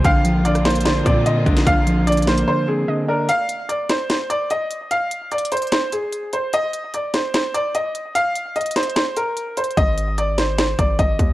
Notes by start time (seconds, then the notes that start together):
0.04 A#1 D3 A#3 C4 F4 F5 G5, kick, closed hi-hat
0.25 F3, closed hi-hat
0.45 D3 D5 F5, closed hi-hat
0.55 cross-stick, closed hi-hat
0.65 A#3 C5, snare, closed hi-hat
0.70 closed hi-hat
0.75 closed hi-hat
0.81 closed hi-hat
0.85 D3 C5 D5, snare, closed hi-hat
1.06 A#2 C4 D5, kick, closed hi-hat
1.26 D3 D#5, closed hi-hat
1.46 A#1 D4, kick, closed hi-hat
1.57 snare, closed hi-hat
1.67 A#1 D3 F5, kick, closed hi-hat
1.87 F3, closed hi-hat
2.07 D3 D5, closed hi-hat
2.12 closed hi-hat
2.17 closed hi-hat
2.22 closed hi-hat
2.27 A#3 C5, snare, closed hi-hat
2.38 closed hi-hat
2.48 D3 C5
2.68 C4 G#4
2.88 D3 D#5
3.08 D4 A#4 D5
3.29 F5, closed hi-hat
3.49 closed hi-hat
3.69 D5, closed hi-hat
3.89 C5, snare, closed hi-hat
4.10 C5, snare, closed hi-hat
4.30 D5, closed hi-hat
4.50 D#5, closed hi-hat
4.71 closed hi-hat
4.91 F5, closed hi-hat
5.11 closed hi-hat
5.32 D5, closed hi-hat
5.38 closed hi-hat
5.45 closed hi-hat
5.52 C5, closed hi-hat
5.57 closed hi-hat
5.62 closed hi-hat
5.67 closed hi-hat
5.72 C5, snare, closed hi-hat
5.92 G#4, closed hi-hat
6.12 closed hi-hat
6.33 C5, closed hi-hat
6.53 D#5, closed hi-hat
6.73 closed hi-hat
6.94 D5, closed hi-hat
7.14 C5, snare, closed hi-hat
7.34 C5, snare, closed hi-hat
7.54 D5, closed hi-hat
7.75 D#5, closed hi-hat
7.95 closed hi-hat
8.15 F5, closed hi-hat
8.35 closed hi-hat
8.56 D#5, closed hi-hat
8.61 closed hi-hat
8.66 closed hi-hat
8.71 closed hi-hat
8.76 C5, snare, closed hi-hat
8.83 closed hi-hat
8.90 closed hi-hat
8.96 C5, snare, closed hi-hat
9.16 A#4, closed hi-hat
9.37 closed hi-hat
9.57 C5, closed hi-hat, open hi-hat
9.64 closed hi-hat
9.71 closed hi-hat
9.77 G#1 D#5, kick, closed hi-hat
9.98 closed hi-hat
10.18 D5, closed hi-hat
10.38 C5, snare, closed hi-hat
10.58 C5, snare, closed hi-hat
10.79 G#1 D5, kick, closed hi-hat
10.99 G#1 D#5, kick, closed hi-hat
11.19 D#2, kick, closed hi-hat